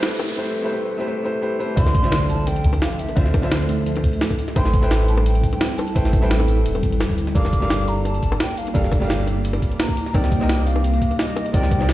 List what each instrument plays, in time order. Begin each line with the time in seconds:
Already playing: ambient pad G3 C4 E5, felt piano A3 E4 G4 B4 C5, riser
0.03 snare, closed hi-hat
0.12 shaker
0.20 closed hi-hat, high bongo, shaker
0.30 closed hi-hat
0.37 felt piano A3 E4 G4 B4 C5
0.62 felt piano A3 E4 G4 B4 C5
0.71 felt piano A3 E4 G4 B4 C5
0.97 felt piano A3 E4 G4 B4 C5
1.06 felt piano A3 E4 G4 B4 C5
1.24 felt piano A3 E4 G4 B4 C5
1.41 felt piano A3 E4 G4 B4 C5
1.59 felt piano A3 E4 G4 B4 C5
1.76 sub bass D2, felt piano D3 D4 F4 C5 E5, ambient pad F3 A3 C4 E5, flute C6, kick, closed hi-hat, impact
1.86 snare, high bongo, shaker
1.95 kick, closed hi-hat, shaker
2.02 felt piano D3 D4 F4 C5 E5, snare
2.12 snare, closed hi-hat, high bongo
2.21 shaker
2.30 flute A5, closed hi-hat, shaker
2.47 flute G5, closed hi-hat, high bongo
2.56 closed hi-hat
2.64 sub bass D2, kick, closed hi-hat, shaker
2.73 closed hi-hat, high bongo
2.82 flute F5, snare, closed hi-hat
2.91 shaker
2.99 flute E5, closed hi-hat, shaker
3.09 closed hi-hat, high bongo
3.16 sub bass D2, felt piano D3 D4 F4 C5 E5, kick, closed hi-hat
3.26 snare, shaker
3.34 kick, closed hi-hat, high bongo, shaker
3.42 felt piano D3 D4 F4 C5 E5, snare
3.52 snare, closed hi-hat
3.61 shaker
3.69 closed hi-hat, high bongo, shaker
3.86 closed hi-hat
3.96 closed hi-hat, high bongo
4.04 kick, closed hi-hat, shaker
4.13 closed hi-hat
4.21 snare, closed hi-hat
4.30 kick, high bongo, shaker
4.39 ambient pad G3 C4 E4, closed hi-hat, shaker
4.48 snare, closed hi-hat
4.55 sub bass A1, felt piano A3 E4 B4 C5 G5, flute C6, kick, closed hi-hat, high bongo
4.65 snare, shaker
4.74 kick, closed hi-hat, shaker
4.81 felt piano A3 E4 B4 C5 G5, snare
4.91 snare, closed hi-hat, high bongo
5.00 shaker
5.08 flute A5, closed hi-hat, shaker
5.17 high bongo
5.26 flute G5, closed hi-hat
5.35 closed hi-hat
5.43 kick, closed hi-hat, shaker
5.53 flute G5, closed hi-hat, high bongo
5.61 snare, closed hi-hat
5.70 shaker
5.78 flute A5, closed hi-hat, high bongo, shaker
5.88 closed hi-hat
5.95 sub bass A1, felt piano A3 E4 B4 C5 G5, kick, closed hi-hat
6.05 snare, shaker
6.13 kick, closed hi-hat, high bongo, shaker
6.21 felt piano A3 E4 B4 C5 G5, snare
6.31 snare, closed hi-hat
6.40 high bongo, shaker
6.48 closed hi-hat, shaker
6.65 sub bass E1, closed hi-hat
6.75 closed hi-hat, high bongo
6.83 sub bass A1, kick, closed hi-hat, shaker
6.92 closed hi-hat
7.00 sub bass E1, snare, closed hi-hat, high bongo
7.10 kick, shaker
7.18 sub bass D2, closed hi-hat, shaker
7.27 snare, closed hi-hat
7.35 sub bass G1, felt piano G3 D4 A4 A#4 F5, ambient pad A#3 F4 D6, flute D6, kick, closed hi-hat
7.45 snare, high bongo, shaker
7.53 kick, closed hi-hat, shaker
7.60 felt piano G3 D4 A4 A#4 F5, snare
7.70 snare, closed hi-hat, high bongo
7.80 shaker
7.88 flute A#5, closed hi-hat, shaker
8.05 flute A5, closed hi-hat, high bongo
8.14 closed hi-hat
8.23 sub bass G1, kick, closed hi-hat, shaker
8.32 closed hi-hat, high bongo
8.40 flute G5, snare, closed hi-hat
8.49 shaker
8.58 flute F5, closed hi-hat, shaker
8.67 closed hi-hat, high bongo
8.74 sub bass G1, felt piano G3 D4 A4 A#4 F5, kick, closed hi-hat
8.84 snare, shaker
8.91 kick, closed hi-hat, high bongo, shaker
9.00 felt piano G3 D4 G4 A#4 F5, snare
9.10 snare, closed hi-hat
9.19 shaker
9.26 closed hi-hat, high bongo, shaker
9.45 closed hi-hat
9.53 closed hi-hat, high bongo
9.62 kick, closed hi-hat, shaker
9.72 closed hi-hat
9.79 flute A#5, snare, closed hi-hat
9.88 kick, high bongo, shaker
9.97 closed hi-hat, shaker
10.06 snare, closed hi-hat
10.13 sub bass C2, felt piano C3 C4 D#4 A#4 D5, ambient pad G3 D#4, flute G5, kick, closed hi-hat, high bongo
10.24 snare, shaker
10.32 kick, closed hi-hat, shaker
10.40 felt piano C3 C4 D#4 A#4 D#5, snare
10.49 snare, closed hi-hat, high bongo
10.59 shaker
10.67 flute F5, closed hi-hat, shaker
10.76 high bongo
10.84 closed hi-hat
10.94 closed hi-hat
11.02 kick, closed hi-hat, shaker
11.11 closed hi-hat, high bongo
11.19 flute D#5, snare, closed hi-hat
11.28 shaker
11.36 closed hi-hat, high bongo, shaker
11.46 closed hi-hat
11.53 sub bass C2, felt piano C3 C4 D#4 A#4 D5, flute G5, kick, closed hi-hat
11.63 snare, shaker
11.71 kick, closed hi-hat, high bongo, shaker
11.79 felt piano C3 C4 D#4 A#4 D5, snare
11.89 snare, closed hi-hat